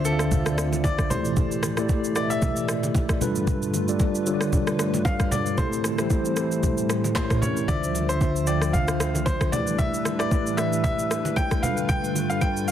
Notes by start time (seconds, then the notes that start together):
Already playing: D2 D3 C4 D4 F4 C5 D5 E5
0.05 D3 D4 F4 A4 C5 E5, shaker
0.13 F5
0.19 cross-stick, shaker
0.32 kick, low conga, shaker
0.46 cross-stick, shaker
0.58 cross-stick, shaker
0.73 low bongo, shaker
0.84 D5, kick, high bongo, low bongo, shaker
0.99 kick, cross-stick, shaker
1.10 A2 B2 E3 A3 E4 G4 A4 C5 D5, high bongo, low conga, shaker
1.25 shaker
1.37 kick, low conga, shaker
1.52 shaker
1.63 cross-stick, low bongo, shaker
1.77 A3 E4 G4 A4 D5, cross-stick, shaker
1.89 kick, high bongo, shaker
2.04 shaker
2.16 A3 E4 G4 B4 D5 D#5, cross-stick, shaker
2.23 E5
2.30 E5, shaker
2.42 kick, low conga, shaker
2.56 shaker
2.69 cross-stick, shaker
2.83 low bongo, shaker
2.95 kick, high bongo, low bongo, shaker
3.09 kick, cross-stick, shaker
3.21 G2 D3 G3 A3 D4 F4 A4 B4, high bongo, low conga, shaker
3.35 shaker
3.47 kick, low conga, shaker
3.62 shaker
3.74 low bongo, shaker
3.88 G3 D4 F4 A4 D5, shaker
4.00 kick, high bongo, shaker
4.15 shaker
4.26 G3 D4 F4 A4 C#5, shaker
4.34 D5
4.41 cross-stick, shaker
4.53 kick, low conga, shaker
4.67 cross-stick, shaker
4.79 cross-stick, shaker
4.94 low bongo, shaker
5.05 F5, kick, high bongo, low bongo, shaker
5.20 kick, cross-stick, shaker
5.31 D5, high bongo, low conga, shaker
5.46 shaker
5.58 A2 E3 G3 A3 C4 E4 G4 A4 C5, kick, low conga, shaker
5.73 shaker
5.84 cross-stick, low bongo, shaker
5.98 A3 E4 G4 A4 C5, cross-stick, shaker
6.10 kick, high bongo, shaker
6.25 shaker
6.37 A3 E4 G4 A4 C5, cross-stick, shaker
6.52 shaker
6.63 kick, low conga, shaker
6.78 shaker
6.90 cross-stick, shaker
7.04 low bongo, shaker
7.15 G3 A3 C#4 G4 A#4 C5, kick, clap, high bongo, low bongo, shaker
7.23 C#5
7.30 kick, cross-stick, mid tom, shaker
7.42 C#5, high bongo, low conga, shaker
7.57 shaker
7.68 D2 D3 F3 D4 F4 C5 D5 E5, kick, low conga, shaker
7.84 shaker
7.95 low bongo, shaker
8.09 D3 D4 F4 C5 E5, shaker
8.21 kick, high bongo, shaker
8.36 shaker
8.47 D3 D4 F4 C5 D5 G5, shaker
8.62 cross-stick, shaker
8.73 F5, kick, low conga, shaker
8.88 cross-stick, shaker
9.00 cross-stick, shaker
9.15 low bongo, shaker
9.26 C5, kick, high bongo, low bongo, shaker
9.41 kick, cross-stick, shaker
9.52 A2 E3 G3 A3 D4 E4 G4 B4 D5, high bongo, low conga, shaker
9.67 shaker
9.78 E5, kick, low conga, shaker
9.94 shaker
10.05 cross-stick, low bongo, shaker
10.19 A3 E4 G4 B4 D5 E5, cross-stick, shaker
10.31 kick, high bongo, shaker
10.47 shaker
10.57 A3 E4 G4 B4 D5 E5, cross-stick, shaker
10.65 E5
10.73 shaker
10.84 E5, kick, low conga, shaker
10.99 shaker
11.11 cross-stick, shaker
11.25 low bongo, shaker
11.36 G5, kick, high bongo, low bongo, shaker
11.51 kick, cross-stick, shaker
11.63 G2 D3 G3 A3 D4 F4 A4 B4 F5, high bongo, low conga, shaker
11.77 shaker
11.89 G5, kick, low conga, shaker
12.04 shaker
12.15 low bongo, shaker
12.30 G3 D4 F4 A4 B4 F5, shaker
12.41 G5, kick, high bongo, shaker
12.57 shaker
12.68 G3 D4 F5, shaker